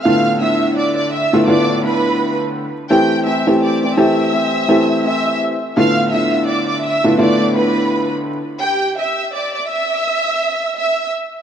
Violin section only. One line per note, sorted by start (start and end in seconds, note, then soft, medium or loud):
0.03 0.36 F5 loud
0.03 0.37 F6 medium
0.41 0.73 E5 medium
0.41 0.73 E6 medium
0.78 0.95 D5 medium
0.78 0.96 D6 medium
0.97 1.10 D5 medium
0.97 1.11 D6 medium
1.12 1.45 E5 medium
1.12 1.45 E6 medium
1.46 1.79 D5 medium
1.46 1.80 D6 medium
1.84 2.37 B4 medium
1.84 2.37 B5 medium
2.91 3.23 G4 medium
2.91 3.23 G5 loud
3.26 3.59 E5 medium
3.26 3.59 E6 medium
3.63 3.81 D5 medium
3.63 3.82 D6 medium
3.84 3.97 D5 medium
3.84 3.97 D6 medium
3.98 5.01 E5 medium
3.98 5.01 E6 medium
5.05 5.37 E5 medium
5.05 5.38 E6 medium
5.78 6.10 F5 loud
5.78 6.10 F6 medium
6.12 6.44 E5 medium
6.12 6.45 E6 medium
6.47 6.66 D5 medium
6.47 6.66 D6 medium
6.68 6.82 D5 medium
6.68 6.82 D6 medium
6.84 7.16 E5 medium
6.84 7.17 E6 medium
7.21 7.52 D5 medium
7.21 7.53 D6 medium
7.57 8.09 B4 medium
7.57 8.09 B5 medium
8.62 8.95 G4 medium
8.62 8.94 G5 loud
8.99 9.31 E5 medium
8.99 9.31 E6 medium
9.34 9.52 D5 medium
9.34 9.53 D6 medium
9.53 9.67 D5 medium
9.53 9.68 D6 medium
9.69 10.72 E5 medium
9.69 10.73 E6 medium
10.78 11.09 E5 medium
10.78 11.10 E6 medium